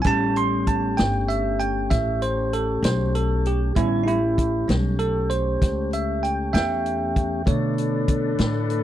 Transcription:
0.02 A1 G3 A3 B3 C#4 G#5, kick, closed hi-hat
0.06 C#4 G4 A5
0.36 C6, closed hi-hat
0.67 A5, kick, closed hi-hat
0.97 G1 G5, snare, closed hi-hat
1.28 E5, closed hi-hat
1.60 G5, closed hi-hat
1.90 A1 E5, kick, snare, closed hi-hat
2.22 C5, closed hi-hat
2.53 A4, closed hi-hat
2.83 B1 C5, snare, closed hi-hat
3.15 A4, closed hi-hat
3.46 G4, closed hi-hat
3.75 A1 D3 G3 B3 C#4 E4 G#5, kick, closed hi-hat
4.04 A3 C#4 D#4 E4 G4
4.08 closed hi-hat
4.38 kick, closed hi-hat
4.68 B1 G3 B3 C#4, snare, closed hi-hat
4.99 A4, closed hi-hat
5.30 C5, closed hi-hat
5.62 C#2, kick, snare, closed hi-hat
5.93 E5, closed hi-hat
6.23 G5, closed hi-hat
6.53 E2 E5 G5, snare, closed hi-hat
6.86 closed hi-hat
7.16 kick, closed hi-hat
7.46 B2 D3 A3 D4 A4 B4 C#5, kick, closed hi-hat
7.78 closed hi-hat
8.08 kick, closed hi-hat
8.38 A2, snare, closed hi-hat
8.70 closed hi-hat

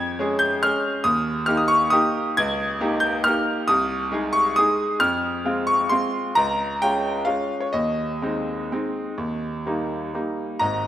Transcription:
Already playing: F2 G#6
0.19 G#3 C#4 G#4
0.39 G6
0.63 G#3 C#4 G#4 F6
1.04 D#2 D#6
1.46 A#3 D#4 G4 F6
1.57 D#6
1.68 C#6
1.90 A#3 D#4 G4 D#6
2.37 C#2 G#6
2.81 A#3 D#4 G4
3.00 G6
3.24 A#3 D#4 G4 F6
3.68 C2 D#6
4.12 G#3 D#4 G#4
4.33 C#6
4.56 G#3 D#4 G#4 D#6
5.00 F2 F6
5.45 G#3 C4 F4
5.67 C#6
5.89 G#3 C4 F4 C6
6.35 C#2 A#5
6.82 G#3 C#4 F4 G5
7.25 G#3 C#4 F4 F5
7.61 C#5
7.73 D#2 D#5
8.22 G#3 C4 D#4
8.72 G#3 C4 D#4
9.18 D#2
9.66 G3 A#3 D#4
10.14 G3 A#3 D#4
10.59 G#1 G#2 D#5 A#5

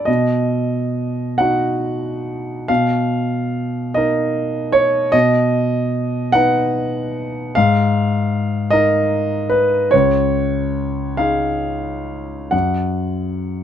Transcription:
Already playing: D5
0.05 B2 D#5
1.38 D#4 F#4 F#5
2.68 B2 F5
3.94 D#4 A#4 D#5
4.72 C#5
5.12 B2 D#5
6.32 D#4 B4 F#5
7.55 G#2 F5
8.71 D#4 A#4 D#5
9.50 B4
9.91 C#2 C#5
11.17 D#4 G#4 F5
12.51 F#2 F#5

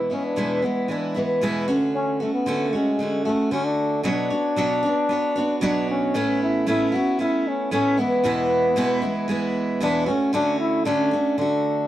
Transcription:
Already playing: E2 B2 E3 G#3
0.10 E3 G#3 B3 C#4 E4
0.25 D4
0.36 E2 B2 E3 G#3 B3 E4
0.62 E3 G#3 B3 E4
0.88 E3 G#3 B3 D4 E4
1.15 E3 G#3 B3 E4
1.41 E2 B2 E3 G#3 B3 E4
1.68 D3 A3 C#4 F#4
1.95 C#4
2.20 A3 C#4 F#4
2.34 B3
2.46 D3 A3 C#4 F#4
2.73 G#3 A3 C#4 F#4
2.99 D3 A3 C#4 F#4
3.25 A3 C#4 F#4
3.51 D3 A3 C#4 F#4
3.65 D4
4.03 B2 F#3 B3 D4 F#4 C#5
4.30 B3 D4 F#4 C#5
4.56 B2 F#3 B3 D4 F#4 C#5
4.83 B3 D4 F#4 C#5
5.09 B3 D4 F#4 C#5
5.36 B3 D4 F#4 C#5
5.61 B2 F#3 B3 D4 F#4 C#5
5.91 C#4
6.14 A2 A3 B3 C#4 E4
6.43 E4
6.66 A2 A3 B3 C#4 E4
6.92 B3 C#4 E4 F#4
7.19 A3 B3 C#4 E4
7.48 C#4
7.71 A2 A3 B3 C#4 E4
7.97 E3 G#3 B3 E4
8.24 E2 B2 E3 G#3 B3 E4
8.76 E2 B2 E3 G#3 B3 E4
9.02 E3 G#3 B3 E4
9.28 E3 G#3 B3 E4
9.80 E2 B2 E3 G#3 B3 D4 E4
10.06 A3 C#4 F#4
10.33 D3 A3 C#4 D4 F#4
10.60 E4
10.85 D3 A3 C#4 D4 F#4
11.11 A3 C#4 F#4
11.38 D3 A3 D4 F#4

